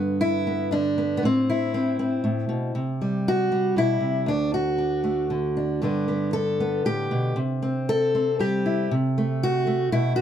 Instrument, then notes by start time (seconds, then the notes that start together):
steel-string acoustic guitar
Already playing: G2 D3 B3
0.21 E4
0.47 B3
0.71 D3 D4
0.98 B3
1.17 B3
1.23 A2 C4
1.50 E4
1.74 C4
1.99 C4
2.24 A2
2.49 B2
2.75 C3
3.01 G3
3.28 F#4
3.52 G3
3.76 B2 E4
4.01 C3
4.26 D2 D4
4.54 F#4
4.78 D4
5.04 A3
5.30 D3
5.57 D4
5.82 G2 D3 B3 D4
6.08 B3
6.33 A4
6.60 B3
6.85 A2 G4
7.11 B2
7.36 C3
7.62 C4
7.89 A4
8.15 C4
8.39 G3 G4
8.66 E4
8.91 C3
9.18 A3
9.43 F#4
9.67 A3
9.92 B2 E4
10.16 C3 F#4